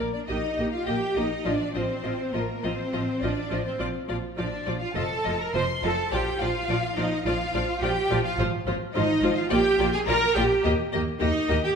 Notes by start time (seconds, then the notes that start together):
Already playing: A#3 A#4
0.00 A#1
0.13 D4 D5
0.26 A#1 A#3 D#4 G4 D#5
0.57 A#1 A#3 G4 D#5
0.71 F4 F5
0.85 A#1 A#3 G4 D#5 G5
1.15 A#1 A#3 D#4 G4 D#5
1.44 A1 F3 D4 F4 D5 D#5
1.75 A1 F3 C4 F4 C5 D#5
2.04 A1 F3 F4 D#5
2.33 A1 F3 A#3 F4 A#4 D#5
2.64 A1 F3 C4 F4 C5 D#5
2.93 A1 F3 F4 D#5
3.22 A1 F3 D4 F4 D5 D#5
3.51 A1 F3 F4 D#5
3.64 C4 C5
3.80 A#1 F3 F4 D5
4.08 A#1 F3 F4 D5
4.37 A#1 F3 D4 F4 D5
4.66 A#1 F3 F4 D5
4.80 F4 F5
4.94 F1 F3 F4 A4 D#5 A5
5.24 F1 F3 F4 D#5
5.39 A#4 A#5
5.52 F1 F3 F4 C5 D#5 C6
5.83 F1 F3 F4 A4 D#5 A5
6.11 A#1 F3 F4 G4 D5 G5
6.40 A#1 F3 F4 D5 F5
6.69 A#1 F3 F4 D5
6.96 A#1 F3 D#4 F4 D5 D#5
7.24 A#1 F3 F4 D5 F5
7.54 A#1 F3 F4 D5
7.81 A#1 F3 F4 G4 D5 G5
8.10 A#1 F3 F4 D5
8.24 F4 F5
8.38 G#1 F3 F4 C5
8.66 G#1 F3 F4 C5
8.94 G#1 F3 D#4 F4 C5 D#5
9.22 G#1 F3 F4 C5
9.35 F4 F5
9.49 A#1 A#3 F4 G4 D5 G5
9.79 A#1 A#3 F4 D5
9.92 G#4 G#5
10.05 A#1 A#3 F4 A#4 D5 A#5
10.35 A#1 A#3 F4 G4 D5 G5
10.64 D#2 A#3 G4 D#5
10.92 D#2 A#3 G4 D#5
11.20 D#2 A#3 D#4 G4 D#5
11.49 D#2 A#3 G4 D#5
11.64 G4 G5